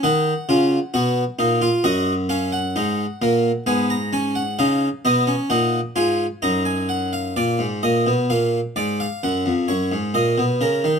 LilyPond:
<<
  \new Staff \with { instrumentName = "Harpsichord" } { \time 4/4 \key dis \phrygian \tempo 4 = 66 << { fis''2 dis''8 eis''16 fis''4~ fis''16 | gis''16 ais''16 gis''16 fis''16 eis''8 dis''8 fis''8 gis''8 ais''16 gis''16 fis''16 eis''16 | d''8 dis''8 eis''8 d''16 eis''16 fis''8 cis''8 dis''8 ais'8 | } \\ { dis'8 eis'8 fis'8 dis'16 eis'16 fis'8 cis'8 dis'8 ais8 | b8 cis'8 dis'8 b16 cis'16 dis'8 eis'8 dis'4 | r1 | } >> }
  \new Staff \with { instrumentName = "Harpsichord" } { \clef bass \time 4/4 \key dis \phrygian dis8 cis8 b,8 ais,8 fis,4 gis,8 ais,8 | gis,4 cis8 b,8 ais,8 gis,8 fis,4 | ais,16 gis,16 ais,16 b,16 ais,8 gis,8 fis,16 eis,16 fis,16 gis,16 ais,16 b,16 cis16 dis16 | }
>>